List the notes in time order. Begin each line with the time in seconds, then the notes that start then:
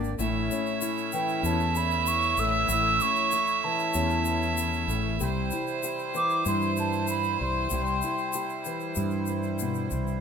Already playing: G#1 G2 D3 A#3 D4 G4 D5
0.04 shaker
0.19 A1 A2 A3 C#4 E4 C#5 E5, shaker
0.51 C#4, shaker
0.67 shaker
0.81 E4, shaker
0.97 shaker
1.12 E3 G5, shaker
1.28 shaker
1.43 E2 C#4 A5, shaker
1.60 shaker
1.75 E2 B5, shaker
1.91 shaker
2.07 C#6, shaker
2.23 shaker
2.37 A1 A3 E6, shaker
2.69 A1 A2 E4 E6, shaker
3.00 C#4 C#6, shaker
3.16 shaker
3.31 E4, shaker
3.47 shaker
3.64 E3 A5
3.79 shaker
3.94 E2 C#4, shaker
4.10 shaker
4.25 E2, shaker
4.42 shaker
4.57 shaker
4.73 shaker
4.88 A1 A3, shaker
5.20 C2 C3 G3 G4 C5, shaker
5.51 E4, shaker
5.67 shaker
5.83 G4, shaker
5.99 shaker
6.14 E3 D6, shaker
6.30 shaker
6.45 G2 E4 C6, shaker
6.61 shaker
6.77 G2 A5, shaker
6.93 shaker
7.07 B5, shaker
7.23 shaker
7.41 C2 G3 C6
7.70 C2 C3 G4, shaker
7.86 shaker
8.02 E4, shaker
8.18 shaker
8.33 G4, shaker
8.49 shaker
8.65 E3, shaker
8.80 shaker
8.95 G2 E4, shaker
9.11 shaker
9.26 G2, shaker
9.43 shaker
9.59 B2, shaker
9.75 shaker
9.91 C2 C3, shaker
10.07 shaker